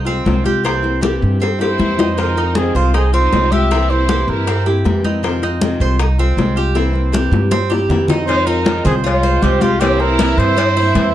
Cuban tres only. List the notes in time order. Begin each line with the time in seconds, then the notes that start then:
0.07 C4
0.45 G4
0.65 C4
1.03 G4
1.42 C4
1.61 G4
1.99 D#4
2.18 C5
2.38 D#4
2.76 C5
2.94 D#4
3.14 C4
3.52 G4
3.71 C4
4.09 G4
4.47 C4
4.66 G4
5.05 D#4
5.24 C5
5.43 D#4
5.81 C5
6.00 D#4
6.19 C4
6.57 G4
6.75 C4
7.13 G4
7.51 C4
7.70 G4
8.09 D#4
8.47 D#4
8.85 C5
9.04 F4
9.23 C5
9.62 G4
9.81 C4
10.19 E4
10.58 C4
10.77 E4